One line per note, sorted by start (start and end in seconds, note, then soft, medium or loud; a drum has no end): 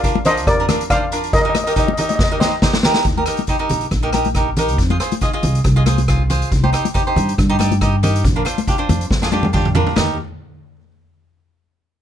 0.00 0.47 A#1 loud
0.00 0.17 D4 medium
0.00 0.22 D5 medium
0.00 0.23 F5 loud
0.00 kick medium
0.00 closed hi-hat medium
0.04 0.17 F4 medium
0.04 0.18 A#4 medium
0.15 high conga medium
0.25 0.45 D4 medium
0.25 0.45 F4 medium
0.25 0.45 A#4 medium
0.25 0.45 C5 medium
0.25 0.48 D#5 loud
0.25 closed hi-hat medium
0.25 low conga medium
0.37 closed hi-hat medium
0.47 1.33 F2 loud
0.47 0.87 A#4 medium
0.47 0.89 D5 loud
0.47 kick loud
0.47 cross-stick medium
0.47 closed hi-hat medium
0.60 0.65 D4 medium
0.60 0.65 F4 medium
0.60 0.65 A#4 loud
0.69 0.82 D4 medium
0.69 0.82 F4 medium
0.69 0.83 A#4 medium
0.69 cross-stick medium
0.69 closed hi-hat medium
0.69 high conga medium
0.69 low conga medium
0.81 closed hi-hat medium
0.90 1.04 D4 medium
0.90 1.04 F4 medium
0.90 1.04 C5 medium
0.90 1.30 D5 medium
0.90 1.34 F5 loud
0.90 kick medium
0.90 cross-stick medium
0.90 closed hi-hat medium
1.12 1.32 D4 medium
1.12 1.32 F4 medium
1.12 1.31 A#4 medium
1.12 closed hi-hat medium
1.24 closed hi-hat medium
1.33 2.19 D#2 medium
1.33 1.41 A#4 medium
1.33 1.40 D#5 loud
1.33 kick loud
1.33 closed hi-hat medium
1.42 1.57 D#4 medium
1.42 1.57 G4 medium
1.42 1.57 A#4 medium
1.42 1.48 D#5 medium
1.50 1.55 D#5 medium
1.55 1.63 D#5 medium
1.55 cross-stick medium
1.55 closed hi-hat medium
1.55 high conga medium
1.64 1.72 D#4 medium
1.64 1.72 G4 medium
1.64 1.73 A#4 medium
1.64 1.70 D#5 medium
1.64 closed hi-hat medium
1.72 1.89 D#4 medium
1.72 1.90 G4 medium
1.72 1.78 D#5 medium
1.72 kick medium
1.77 1.90 A#4 medium
1.77 1.86 D#5 medium
1.77 closed hi-hat medium
1.87 1.92 D#5 medium
1.87 high conga medium
1.93 2.00 D#5 medium
1.93 closed hi-hat loud
1.98 2.17 D#4 medium
1.98 2.17 G4 medium
1.98 2.18 A#4 medium
1.98 2.08 D#5 medium
1.98 low conga medium
2.09 2.14 D#5 medium
2.09 closed hi-hat medium
2.09 high conga medium
2.16 2.23 D#5 medium
2.16 kick loud
2.16 snare medium
2.24 2.31 D#5 medium
2.32 2.37 D#4 medium
2.32 2.37 G4 medium
2.32 2.37 A#4 medium
2.32 2.38 D#5 medium
2.40 2.54 D#4 medium
2.40 2.54 G4 medium
2.40 2.54 C5 medium
2.40 2.46 D#5 medium
2.40 snare medium
2.40 high conga medium
2.40 low conga medium
2.48 2.54 D#5 medium
2.62 2.76 D#4 medium
2.62 2.76 G4 medium
2.62 2.76 C5 medium
2.62 kick medium
2.62 snare loud
2.62 low conga medium
2.73 snare medium
2.73 high conga medium
2.83 3.04 D#4 medium
2.83 3.04 G4 medium
2.83 3.04 A#4 loud
2.83 snare loud
2.83 low conga medium
2.94 snare medium
3.04 3.24 D#2 medium
3.04 kick loud
3.04 closed hi-hat medium
3.17 3.23 D#4 medium
3.17 3.23 G4 medium
3.17 3.23 A#4 medium
3.17 high conga medium
3.26 3.41 D#4 medium
3.26 3.40 G4 medium
3.26 3.41 A#4 medium
3.26 cross-stick medium
3.26 closed hi-hat medium
3.37 closed hi-hat medium
3.37 high conga medium
3.47 3.56 D#4 medium
3.47 3.56 G4 medium
3.47 3.56 C5 medium
3.47 kick medium
3.47 closed hi-hat medium
3.59 3.85 D#4 medium
3.59 3.85 G4 medium
3.59 3.86 A#4 medium
3.69 3.89 A#1 medium
3.69 closed hi-hat medium
3.69 low conga medium
3.81 closed hi-hat medium
3.91 4.78 A#1 medium
3.91 kick medium
3.91 cross-stick medium
3.91 closed hi-hat medium
4.03 4.09 D#4 medium
4.03 4.09 G4 medium
4.03 4.09 A#4 medium
4.13 4.27 D#4 medium
4.13 4.27 G4 medium
4.13 4.27 A#4 medium
4.13 cross-stick medium
4.13 closed hi-hat medium
4.13 high conga medium
4.25 closed hi-hat medium
4.25 high conga medium
4.35 4.49 D#4 medium
4.35 4.49 G4 medium
4.35 4.49 A#4 medium
4.35 kick medium
4.35 cross-stick medium
4.35 closed hi-hat medium
4.57 4.77 D#4 medium
4.57 4.77 G4 medium
4.57 4.77 A#4 medium
4.57 closed hi-hat medium
4.57 low conga medium
4.68 closed hi-hat medium
4.78 4.97 F2 medium
4.78 kick loud
4.78 closed hi-hat medium
4.90 4.96 F4 medium
4.90 4.96 G#4 medium
4.90 4.96 C5 medium
4.90 high conga medium
5.00 5.14 F4 medium
5.00 5.14 G#4 medium
5.00 5.14 C5 medium
5.00 cross-stick medium
5.00 closed hi-hat medium
5.11 closed hi-hat medium
5.11 high conga medium
5.21 5.29 F4 medium
5.21 5.29 G#4 medium
5.21 5.29 D#5 medium
5.21 kick medium
5.21 closed hi-hat medium
5.33 5.59 F4 medium
5.33 5.59 G#4 medium
5.33 5.59 D#5 medium
5.43 5.62 C2 medium
5.43 closed hi-hat medium
5.43 low conga medium
5.55 closed hi-hat medium
5.64 6.41 C2 medium
5.64 kick loud
5.64 cross-stick medium
5.64 closed hi-hat medium
5.76 5.82 F4 medium
5.76 5.83 G#4 medium
5.76 5.82 D#5 medium
5.86 6.00 F4 medium
5.86 6.00 G#4 medium
5.86 6.00 C5 medium
5.86 cross-stick medium
5.86 closed hi-hat medium
5.86 high conga medium
5.98 closed hi-hat medium
5.98 high conga medium
6.08 6.22 F4 medium
6.08 6.22 G#4 medium
6.08 6.22 C5 medium
6.08 kick medium
6.08 cross-stick medium
6.08 closed hi-hat medium
6.30 6.49 F4 medium
6.30 6.50 G#4 medium
6.30 6.50 C5 loud
6.30 closed hi-hat medium
6.30 low conga medium
6.42 closed hi-hat medium
6.51 6.70 C2 medium
6.51 kick loud
6.51 closed hi-hat medium
6.64 6.69 D#4 medium
6.64 6.69 G4 medium
6.64 6.69 C5 medium
6.64 high conga medium
6.73 6.86 D#4 medium
6.73 6.87 G4 medium
6.73 6.87 C5 medium
6.73 cross-stick medium
6.73 closed hi-hat medium
6.85 closed hi-hat medium
6.85 high conga medium
6.94 7.01 D#4 medium
6.94 7.02 G4 medium
6.94 7.02 C5 medium
6.94 kick medium
6.94 closed hi-hat medium
7.07 7.32 D#4 medium
7.07 7.32 G4 medium
7.07 7.32 C5 medium
7.16 7.35 G2 medium
7.16 closed hi-hat medium
7.16 low conga medium
7.29 closed hi-hat medium
7.38 8.26 G2 medium
7.38 kick loud
7.38 cross-stick medium
7.38 closed hi-hat medium
7.49 7.56 D#4 loud
7.49 7.56 G4 medium
7.49 7.56 C5 loud
7.59 7.73 D#4 medium
7.59 7.73 G4 medium
7.59 7.73 D5 medium
7.59 cross-stick medium
7.59 closed hi-hat medium
7.59 high conga medium
7.71 closed hi-hat medium
7.71 high conga medium
7.81 7.95 D#4 medium
7.81 7.95 G4 medium
7.81 7.95 D#5 medium
7.81 kick medium
7.81 cross-stick medium
7.81 closed hi-hat medium
8.03 8.22 D#4 medium
8.03 8.23 G4 medium
8.03 8.22 A#4 medium
8.03 closed hi-hat medium
8.03 low conga medium
8.16 closed hi-hat medium
8.24 8.43 A#1 loud
8.24 kick loud
8.24 closed hi-hat medium
8.36 8.42 D4 medium
8.36 8.42 F4 medium
8.36 8.42 A#4 medium
8.45 8.59 D4 medium
8.45 8.59 F4 medium
8.45 8.59 C5 medium
8.45 cross-stick medium
8.45 closed hi-hat medium
8.58 closed hi-hat medium
8.58 high conga medium
8.67 8.75 D4 medium
8.67 8.75 F4 medium
8.67 8.75 G4 medium
8.67 kick medium
8.67 closed hi-hat medium
8.78 9.04 D4 medium
8.78 9.04 F4 medium
8.78 9.05 C5 medium
8.89 9.08 F2 medium
8.89 closed hi-hat medium
8.89 high conga medium
8.89 low conga medium
9.01 closed hi-hat medium
9.11 9.86 F2 medium
9.11 kick loud
9.11 snare medium
9.22 9.28 D4 medium
9.22 9.29 F4 medium
9.22 9.28 G#4 medium
9.22 snare medium
9.32 9.46 D4 medium
9.32 9.46 F4 medium
9.32 9.46 G4 medium
9.32 high tom medium
9.32 high conga medium
9.43 high tom medium
9.43 high conga medium
9.43 low conga medium
9.53 9.67 D4 medium
9.53 9.67 F4 medium
9.53 9.67 G4 medium
9.53 kick medium
9.53 mid tom medium
9.65 mid tom medium
9.75 9.95 D4 medium
9.75 9.95 F4 medium
9.75 9.95 A#4 medium
9.75 floor tom loud
9.75 low conga medium
9.87 floor tom medium
9.96 10.17 D#2 medium
9.96 10.17 D#4 medium
9.96 10.17 G4 medium
9.96 10.17 A#4 medium
9.96 snare loud
9.96 floor tom loud
9.96 high conga medium